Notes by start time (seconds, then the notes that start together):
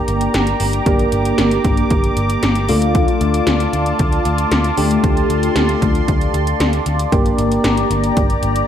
Already playing: A#3 D4 G4 D5 A#5 D6
0.08 G1, closed hi-hat
0.21 closed hi-hat
0.34 G1, snare, closed hi-hat
0.47 closed hi-hat
0.60 G1, open hi-hat
0.73 closed hi-hat
0.86 G1 A#3 D4 G4, kick, closed hi-hat
0.99 closed hi-hat
1.12 G1, closed hi-hat
1.25 closed hi-hat
1.38 G1, snare, closed hi-hat
1.51 closed hi-hat
1.65 G1, kick, closed hi-hat
1.77 closed hi-hat
1.90 G1, kick, closed hi-hat
2.04 closed hi-hat
2.17 G1, closed hi-hat
2.30 closed hi-hat
2.43 G1, snare, closed hi-hat
2.55 closed hi-hat
2.69 D2 A3 D4 F4 A5, open hi-hat
2.82 closed hi-hat
2.95 kick, closed hi-hat
3.08 closed hi-hat
3.21 D2, closed hi-hat
3.34 closed hi-hat
3.47 D2, snare, closed hi-hat
3.60 closed hi-hat
3.73 D2, closed hi-hat
3.86 closed hi-hat
3.99 D2, kick, closed hi-hat
4.12 closed hi-hat
4.25 D2, closed hi-hat
4.38 closed hi-hat
4.51 D2, snare, closed hi-hat
4.64 closed hi-hat
4.77 D2 A3 D4 G4 C6, open hi-hat
4.91 closed hi-hat
5.04 D2, kick, closed hi-hat
5.17 closed hi-hat
5.30 D2, closed hi-hat
5.43 closed hi-hat
5.56 D2, snare, closed hi-hat
5.69 closed hi-hat
5.82 D2, kick, closed hi-hat
5.95 closed hi-hat
6.08 D2, kick, closed hi-hat
6.21 closed hi-hat
6.34 D2, closed hi-hat
6.47 closed hi-hat
6.60 D2, snare, closed hi-hat
6.73 closed hi-hat
6.86 D2, closed hi-hat
6.99 closed hi-hat
7.12 G1 A#3 D4 G4 A#5 D6, kick, closed hi-hat
7.26 closed hi-hat
7.38 G1, closed hi-hat
7.52 closed hi-hat
7.64 G1, snare, closed hi-hat
7.77 closed hi-hat
7.90 G1, closed hi-hat
8.04 closed hi-hat
8.17 G1, kick, closed hi-hat
8.30 closed hi-hat
8.43 G1, closed hi-hat
8.56 closed hi-hat